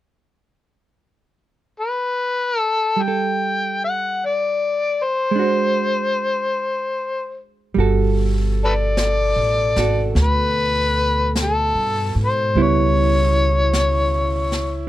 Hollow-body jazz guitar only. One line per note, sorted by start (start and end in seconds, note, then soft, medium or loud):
2.96 5.31 G3 soft
3.08 5.41 A4 soft
5.31 7.74 G#3 soft
5.35 7.76 D4 soft
5.35 7.77 F#4 soft
5.42 7.79 C5 soft
7.74 12.54 G3 soft
7.79 9.77 F#4 soft
7.79 9.79 A4 soft
9.79 12.54 F#4 soft
9.79 12.55 A4 soft
12.56 14.87 G3 soft
12.56 14.89 B3 soft
12.56 14.89 E4 soft